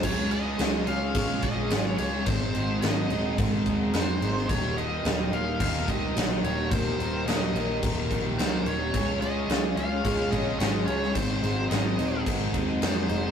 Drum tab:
CC |x-x-x-x-x-x-x-x-|x-x-x-x-x-x-x-x-|x-x-x-x-x-x-x-x-|x-x-x-x-x-x-x-x-|
SD |----o-------o---|----o-------o--o|----o-------o---|----o-------o---|
BD |o-------o-o-----|o-------o-o-----|o-------o-o-----|o-------o-o-----|

CC |x-x-x-x-x-x-x-x-|x-x-x-x-x-x-x-x-|
SD |----o-------o--o|--o-o-------o---|
BD |o-------o-o-----|o-------o-o-----|